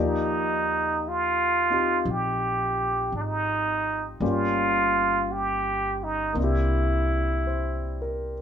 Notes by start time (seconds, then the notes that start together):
Already playing: D#2 F3 A#3 D#4 D5
0.00 G4
0.04 D#4
1.08 F4
1.70 C4 D#4 F4 G4
2.05 A#1
2.11 G4
3.12 G#1 D4
3.21 D#4
4.20 G1 G3 A#3 C#4 F4 G4
4.28 F4
5.32 G4
6.03 D#4
6.33 C2 A#3 C4
6.38 D4 E4
6.44 G4
7.47 C5
8.02 A#4